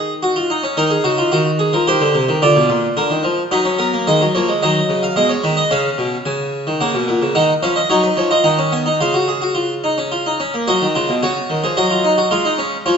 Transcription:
Already playing: D#3 G#4 D#5
0.23 F#4
0.36 F4
0.50 D#4
0.63 C#4
0.77 D#3 D#4 A#4
0.90 G#4
1.04 C#3 F#4
1.18 F4
1.32 D#3 F#4
1.59 G#4
1.73 F3 A#4
1.87 D#3 G4 C5
2.01 D3
2.15 C3
2.29 D#3
2.42 D3 F4 D5
2.56 B2
2.69 A#2
2.97 D3 A#4
3.10 D#3
3.24 F3
3.51 F#3 D#4 B4
3.65 C#4
3.78 B3 A#4
3.93 A#3
4.07 D#3 G#3 D#5
4.21 F#3
4.35 F3 A#3 C#5
4.49 G#3
4.62 D#3 F#3 D#5
4.89 C#3
5.03 F5
5.16 B2 G#3 D#5
5.29 C#5
5.44 D#3 B4
5.57 D#5
5.71 C#3 C#4 F5
5.98 B2
6.25 C#3 G#5
6.67 D#3
6.81 C#3 A#3 F#5
6.94 B2
7.08 A#2
7.22 C#3
7.35 D#3 D#4 F#5
7.63 F3 C#4 F5
7.76 D#5
7.90 F#3 D#4 C#5
8.03 B4
8.17 F3 C#5
8.31 F4 D#5
8.44 D#3 D#4 F#5
8.59 C#4
8.72 B3 G#5
8.86 D#4
9.01 C#3 F4 F5
9.14 F#4
9.28 G#4
9.42 F#4
9.55 F4
9.84 D#4
9.98 C#4
10.12 F4
10.26 D#4
10.40 C#4
10.54 A#3
10.67 F#3 F#4 D#5
10.81 D#3
10.95 C#3 F4
11.09 B2
11.23 C#3 F#4 C#5
11.50 D#3
11.64 F3 G#4
11.77 F#3 F#4 D#5
11.91 F4
12.04 D#4
12.18 F#4
12.31 G#3 F4 F5
12.45 D#4
12.58 C#4
12.86 F3 F4 C#5

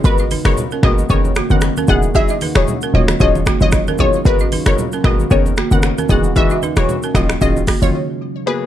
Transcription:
0.04 G#1 B2 G#3 A#3 B3 F#4 A#4 B4, kick, shaker
0.18 F#4 D#5, shaker
0.31 D#4 B4, open hi-hat, high conga, shaker
0.45 F#1 G#3 B3 F#4 A#4 C#5, finger snap, cross-stick, shaker
0.57 low conga, shaker
0.71 C#4 A#4, shaker
0.83 G#1 G#3 A#3 B3 F#4 A#4 D#5, finger snap, kick, cross-stick, low conga
0.98 high conga, shaker
1.09 F#1 D#3 B3 C#4 G#4 A#4 C#5, kick, shaker
1.25 high conga, shaker
1.35 A#3 F#4, finger snap, cross-stick, shaker
1.50 F#1 D#3 B3 C#4 A#4 F#5, high conga, shaker
1.61 finger snap, cross-stick, shaker
1.77 C#4 A#4, high conga, shaker
1.88 E1 D#3 F#3 G#3 B3 D#4 E4 F#4 G#4 F#5, kick, high conga, low conga, shaker
2.02 shaker
2.15 F#3 D#4 E4 G#4 E5, kick, shaker
2.28 F#4 D#5, shaker
2.41 D#4 B4, open hi-hat, high conga, shaker
2.55 E1 F#3 D#4 E4 G#4 C#5, finger snap, cross-stick, shaker
2.68 low conga, shaker
2.82 C#4 A#4, shaker
2.94 D#1 C#3 F#3 A#3 D#4 F4 F#4 C#5 D#5, low conga
3.08 finger snap, cross-stick, high conga, shaker
3.20 D#1 F#3 C#4 D#4 F4 G#4 C#5 D#5, kick, shaker
3.35 high conga, shaker
3.46 A#3 F#4, finger snap, kick, cross-stick, shaker
3.60 F#1 F#3 D#4 F4 C#5 D#5, high conga, shaker
3.72 finger snap, kick, cross-stick, shaker
3.87 C#4 A#4, high conga, shaker
3.98 F#3 B3 D#4 F4 G#4 C#5, kick, high conga, low conga, shaker
4.13 shaker
4.25 G#1 B2 G#3 A#3 B3 F#4 A#4 B4, kick, shaker
4.39 F#4 D#5, shaker
4.52 D#4 B4, open hi-hat, high conga, shaker
4.66 F#1 G#3 B3 F#4 A#4 C#5, finger snap, cross-stick, shaker
4.78 low conga, shaker
4.92 C#4 A#4, shaker
5.04 G#1 G#3 A#3 B3 F#4 A#4 D#5, finger snap, kick, cross-stick, low conga
5.20 high conga, shaker
5.30 F#1 D#3 B3 C#4 G#4 A#4 C#5, kick, shaker
5.46 high conga, shaker
5.57 A#3 F#4, finger snap, cross-stick, shaker
5.71 F#1 D#3 B3 C#4 A#4 F#5, high conga, shaker
5.82 finger snap, cross-stick, shaker
5.98 C#4 A#4, high conga, shaker
6.09 E1 D#3 E3 G#3 B3 D#4 F#4 G#4 F#5, kick, high conga, low conga, shaker
6.24 shaker
6.36 E3 G#3 D#4 F#4 E5, kick, shaker
6.50 F#4 D#5, shaker
6.63 D#4 B4, high conga, shaker
6.76 E1 E3 G#3 D#4 F#4 C#5, finger snap, cross-stick, shaker
6.89 low conga, shaker
7.03 C#4 A#4, shaker
7.14 D#1 C#3 D#3 F#3 A#3 C#4 F4 F#4 D#5, finger snap, kick, cross-stick, low conga, shaker
7.29 finger snap, cross-stick, high conga, shaker
7.41 D#1 D#3 F#3 C#4 F4 G#4 D#5, kick, shaker
7.57 high conga, shaker
7.67 A#3 F#4, finger snap, kick, cross-stick, open hi-hat, shaker
7.82 F#1 D#3 F#3 C#4 F4 C#5, high conga, shaker
8.46 F#3 A#3 B3 G#4 B4

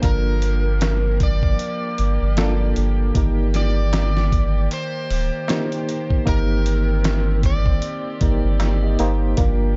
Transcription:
Already playing: F3 A#3 D4 F4 G4 A4
0.02 G1 A#3 D4 F4 A#4, kick, closed hi-hat
0.42 closed hi-hat
0.81 snare, closed hi-hat, darbuka tek
1.20 D5, kick, closed hi-hat
1.43 kick
1.59 closed hi-hat
1.98 G1, closed hi-hat
2.22 G1
2.37 A#3 D4 F4 A4, snare, closed hi-hat, darbuka tek
2.76 G1, closed hi-hat
3.14 G1 D#3 A#3 D#4 G4 A#4, kick, closed hi-hat
3.54 D5, snare, closed hi-hat
3.93 snare, closed hi-hat, darbuka tek
4.17 snare
4.32 kick, closed hi-hat
4.71 C5, closed hi-hat
5.11 D1, open hi-hat
5.48 A#3 D#4 G4 A#4, snare, closed hi-hat, darbuka tek
5.72 closed hi-hat
5.89 closed hi-hat
6.10 kick
6.25 G1 A#3 C4 D#4 G4 A#4, kick, closed hi-hat
6.66 closed hi-hat
7.04 snare, closed hi-hat, darbuka tek
7.43 D5, kick, closed hi-hat
7.66 kick
7.82 closed hi-hat
8.21 G1 A#3 D#4 G4 A#4, kick, closed hi-hat
8.44 G1
8.60 snare, closed hi-hat, darbuka tek
8.83 A#3 D#4 G4 D#5
8.99 G1 A#3 D#4 G4 C5, closed hi-hat
9.37 G1 F3 A#3 D4 F4 A#4, kick, closed hi-hat

